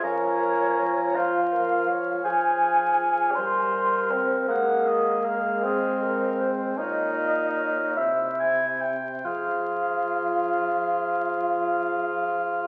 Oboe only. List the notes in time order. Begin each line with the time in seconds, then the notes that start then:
0.04 A#5
1.15 F5
2.26 F5
4.50 F#5
4.86 D#5
5.24 F5
6.78 F5
7.97 E5
8.39 G#5
8.81 G5
9.25 F5